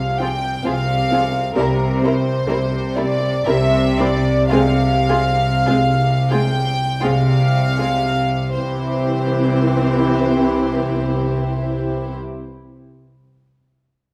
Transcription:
Already playing: C2 C3 F5
0.19 F3 C4 F4 G#4 G5
0.64 C2 C3 F3 C4 F4 G#4 F5
1.11 F3 C4 F4 G#4
1.55 C2 C3 G3 C4 E4 A#4
1.60 A#4
2.01 G3 C4 E4 A#4 C5
2.47 C2 C3 G3 C4 E4 A#4
2.95 G3 C4 E4 A#4 D5
3.46 C2 C3 G3 C4 E4 A#4 E5
3.96 G3 C4 E4 A#4 D5
4.49 C2 C3 G#3 C4 F4 G#4 F5
5.09 G#3 C4 F4 G#4
5.66 C2 C3 G#3 C4 F4 G#4
6.29 G#3 C4 F4 G#4 G5
7.00 C2 C3 G#3 C4 F4 G#4 F5
7.78 G#3 C4 F4 G#4
8.52 C2 C3 E3 C4 E4 G4 C5

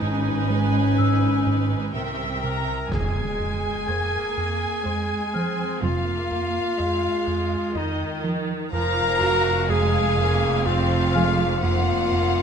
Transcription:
Already playing: G#1 G#2 D#4
0.01 G#2 C#4 B4 G#5
0.50 G#3
0.98 G#2 E6
1.47 G#2
1.94 C2 C3 C4 A#4 E5 G5
2.42 C3 A#4 A#5
2.90 F1 F2 G#3 G#4 G#5, impact
3.40 F2
3.87 F2 A#3 C5 G#6
4.38 F2
4.85 F2 G#3 C5
5.34 F3 C4 F6
5.82 F1 F2 A#3 F4 F5
6.31 F2
6.79 F2 G#3 D#5
7.27 F2
7.75 F2 D#3 D#4 D#5
8.24 F3
8.73 F1 F2 F3 A#4 F5 A#5
9.21 F2 F#4
9.69 F2 G#3 G#4 F5 G#5
10.18 F2 A#3
10.66 F2 C4 F4 F5
11.14 F3 G#3 G#5 F6
11.62 F2 A#3 F4 F5 F#5
12.12 F2

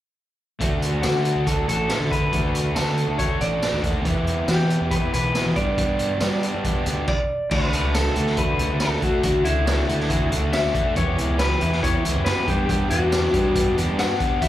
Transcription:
0.59 D2 A3 D4 F#4, kick, closed hi-hat
0.82 closed hi-hat
1.02 D3 A3 D4 F#4, snare, closed hi-hat, tambourine
1.25 closed hi-hat
1.36 D2
1.46 A3 D4 F#4 A4, kick, closed hi-hat
1.68 A1 D4 F#4 A4, closed hi-hat
1.90 A3 D4 F#4, snare, closed hi-hat, tambourine
2.00 D3
2.10 D4 F#4 B4, kick, closed hi-hat
2.32 D2 A3 D4 F#4, kick, closed hi-hat
2.55 closed hi-hat
2.75 D3 A3 D4 F#4 A4, snare, closed hi-hat, tambourine
2.97 closed hi-hat
3.08 D2
3.18 A3 D4 F#4 C#5, kick, closed hi-hat
3.41 A1 D4 F#4 D5, closed hi-hat
3.62 A3 D4 F#4, snare, closed hi-hat, tambourine
3.73 D#2
3.83 D4 F#4, kick, closed hi-hat
4.05 E2 E3 B3 E4 G4, kick, closed hi-hat
4.27 closed hi-hat
4.48 E3 B3 E4 G4, snare, closed hi-hat, tambourine
4.70 closed hi-hat
4.81 E2
4.91 E3 B3 E4 G4 B4, kick, closed hi-hat
5.12 B1 B3 E4 G4 B4, closed hi-hat
5.34 E3 B3 E4 G4, snare, closed hi-hat, tambourine
5.46 E3
5.56 G2 B3 D4 G4 D5, kick, closed hi-hat
5.77 B3 D4 G4, kick, closed hi-hat
5.99 closed hi-hat
6.20 G3 B3 D4 G4, snare, closed hi-hat, tambourine
6.43 closed hi-hat
6.54 G2
6.64 B3 D4 G4, kick, closed hi-hat
6.86 D2 D4 G4, closed hi-hat
7.08 D5, kick, crash
7.51 D2 A3 D4 F#4 B4, kick, crash
7.73 C#2 A3 D4 F#4, closed hi-hat
7.95 A3 D4 F#4 A4, snare, closed hi-hat, tambourine
8.16 D2 A3 D4 F#4, closed hi-hat
8.26 snare
8.37 A3 D4 F#4 B4, kick, closed hi-hat
8.59 C#2 A3 D4 F#4, closed hi-hat
8.70 D2
8.80 A3 D4 F#4 A4, snare, closed hi-hat, tambourine
9.02 A3 D4 F#4, kick, closed hi-hat
9.23 D2 A3 D4 F#4, kick, closed hi-hat
9.44 C#2 A3 D4 E4 F#4, closed hi-hat
9.66 A3 D4 F#4, snare, closed hi-hat, tambourine
9.88 D2 A3 D4 F#4, closed hi-hat
10.00 snare
10.09 A3 D4 F#4, kick, closed hi-hat
10.32 C#2 A3 D4 F#4, closed hi-hat
10.43 D2
10.52 A3 D4 F#4 E5, snare, closed hi-hat, tambourine
10.74 A3 D4 F#4, kick, closed hi-hat
10.96 E2 E3 B3 E4 G4 C#5, kick, closed hi-hat
11.17 C#2 E3 B3 E4 G4, closed hi-hat
11.39 E3 B3 E4 G4 B4, snare, closed hi-hat, tambourine
11.60 E2 E3 B3 E4 G4, closed hi-hat
11.72 snare
11.82 E3 B3 E4 G4 C#5, kick, closed hi-hat
12.04 C#2 E3 B3 E4 G4, closed hi-hat
12.16 F#2
12.25 E3 B3 E4 G4 B4, snare, closed hi-hat, tambourine
12.47 G2 B3 D4 G4, kick, closed hi-hat
12.66 B3 G4, kick, closed hi-hat
12.70 D4 G4
12.90 E2 B3 D4 F#4 G4, closed hi-hat
13.12 B3 D4 G4, snare, closed hi-hat, tambourine
13.34 G2 B3 D4 G4, kick, closed hi-hat
13.55 B3 D4 G4, kick, closed hi-hat
13.77 E2 B3 D4 G4, closed hi-hat
13.88 G2
13.98 B3 D4 G4 F#5, snare, closed hi-hat, tambourine
14.20 B3 D4 G4, kick, closed hi-hat
14.42 D2 F#3 A3 D4 F#4 E5, kick, closed hi-hat

